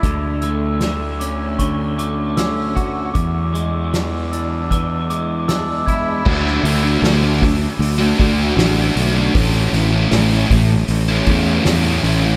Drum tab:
CC |----------------|----------------|x---------------|----------------|
HH |x-x-x-x-x-x-x-x-|x-x-x-x-x-x-x-x-|--o-o-o-o-o-o-o-|o-o-o-o-o-o-o-o-|
SD |----o-------o---|----o-------o---|-o--o-o-----o---|----o-------o---|
BD |o-------o-----o-|o-------o-----o-|o-----o---o-----|o-----o---o-----|